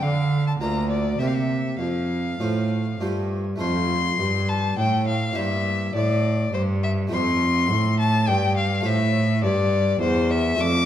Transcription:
0.02 harpsichord D3, cello D3, violin F5
0.47 violin A5
0.61 cello D2, harpsichord D2 A#3 F4 A#4, violin A#5
0.90 violin D5
1.19 cello C3, harpsichord C3 A#3 G4 C5, violin E5
1.27 violin F5
1.34 violin E5
1.79 harpsichord F2, cello F2, violin F5
2.40 harpsichord A2 A3 F4 C5, cello A2
3.00 harpsichord G2 A3 F4 C5, cello G2
3.56 harpsichord A3 F4 C5
3.60 harpsichord F2, cello F2, violin C6
4.19 cello G2, harpsichord G2
4.48 violin A5
4.78 harpsichord A2, cello A2, violin G5
5.07 violin F5
5.31 harpsichord A#3 E4 C5
5.36 harpsichord G2, cello G2, violin E5
5.95 cello A2, harpsichord A2, violin D5
6.53 harpsichord G2, cello G2, violin C5
6.83 violin E5
7.07 harpsichord A3 F4 C5
7.12 harpsichord F2, cello F2, violin C6
7.70 harpsichord A2, cello A2
7.99 violin A5
8.27 harpsichord G2, cello G2, violin G5
8.56 violin F5
8.81 harpsichord A3 F4 C5
8.85 harpsichord A2, cello A2, violin E5
9.43 cello G2, harpsichord G2, violin D5
10.00 harpsichord E2, cello E2, violin C5
10.31 violin E5
10.55 harpsichord A3 F4 D5
10.59 harpsichord F2, cello F2, violin D6

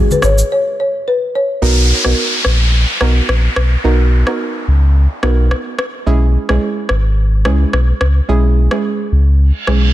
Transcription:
0.11 marimba B4, high conga, shaker
0.22 sub bass G#1, marimba C#5, cross-stick, shaker
0.38 shaker
0.52 marimba C#5
0.80 marimba C#5
1.08 marimba B4
1.35 marimba C#5
1.62 sub bass B1, synth pluck B3 D#4 F#4 A#4, downlifter
2.05 sub bass B1, synth pluck B3 D#4 F#4 A#4, cross-stick
2.45 sub bass A#1, cross-stick
3.01 sub bass B1, synth pluck B3 D#4 F#4 A#4, cross-stick
3.29 sub bass A#1, cross-stick
3.56 sub bass B1, cross-stick
3.84 sub bass B1, synth pluck B3 D#4 F#4 A#4
4.27 synth pluck B3 D#4 F#4 A#4, cross-stick
4.68 sub bass C#2
5.23 sub bass B1, synth pluck B3 D#4 F#4 A#4, cross-stick
5.51 cross-stick
5.79 cross-stick
6.06 sub bass B1, synth pluck G#3 C#4 E4 G#4
6.49 sub bass B1, synth pluck G#3 C#4 E4 G#4, cross-stick
6.89 sub bass G#1, cross-stick
7.45 sub bass C#2, synth pluck G#3 C#4 E4 G#4, cross-stick
7.73 sub bass B1, cross-stick
8.01 sub bass C#2, cross-stick
8.28 sub bass B1, synth pluck G#3 C#4 E4 G#4
8.71 synth pluck G#3 C#4 E4 G#4, cross-stick
9.12 sub bass C#2
9.40 reverse cymbal
9.67 sub bass B1, synth pluck G#3 C#4 E4 G#4, cross-stick

